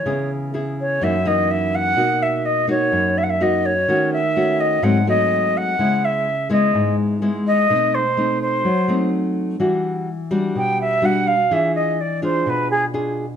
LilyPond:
<<
  \new Staff \with { instrumentName = "Flute" } { \time 4/4 \key b \mixolydian \tempo 4 = 126 cis''8 r4 cis''8 e''8 dis''8 e''8 fis''8~ | fis''8 e''8 dis''8 cis''4 e''32 fis''32 e''16 dis''8 cis''8~ | cis''8 e''4 dis''8 fis''8 dis''4 fis''8~ | fis''8 e''4 dis''4 r4 dis''8~ |
dis''8 c''4 c''4. r4 | \key c \lydian r2 g''8 e''8 fis''8 f''8 | e''8 dis''8 d''8 c''8 b'8 gis'8 r4 | }
  \new Staff \with { instrumentName = "Nylon-string guitar" } { \time 4/4 \key b \mixolydian << { <b e' gis'>4 <b e' gis'>4 <e ais dis'>8 <e ais dis'>4. | <ais dis' fis'>4. <ais dis' fis'>4. <ais dis' fis'>8 r8 | <a cis' fis'>8 r8 <a cis' fis'>4 <fis a bis>8 <fis a bis>4. | <gis b e'>4 r8 <gis b e'>4. <gis b e'>4 |
<a c' dis'>8 r8 <a c' dis'>4 r8 <a c' dis'>4. | \key c \lydian <g d' fis'>4 r8 <g d' fis'>4. <g d' fis'>8 r8 | <d' f' gis'>4 r8 <d' f' gis'>4. <d' f' gis'>8 r8 | } \\ { cis2 fis,2 | b,2 fis,2 | dis2 gis,2 | cis2 gis,2 |
b,2 fis2 | e2 b,2 | e2 b,2 | } >> }
>>